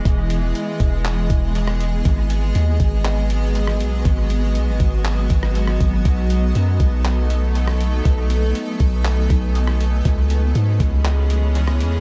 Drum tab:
HH |x-x-x-x-x-x-x-x-|x-x-x-x-x-x-x-x-|x-x-x-x-x-x-x-x-|x-x-x-x-x-x-x-x-|
CP |--------x-------|--------x-------|--------x-------|--------x-------|
SD |-------------r--|-------------r--|-----------r-r--|-------------r--|
BD |o-----o---o-----|o-----o---------|o-----o---o---o-|o-----o---------|

HH |x-x-x-x-x-x-x-x-|x-x-x-x-x-x-x-x-|
CP |--------x-------|--------x-------|
SD |-------------r--|-------------r--|
BD |o-----o---o-----|o-----o---------|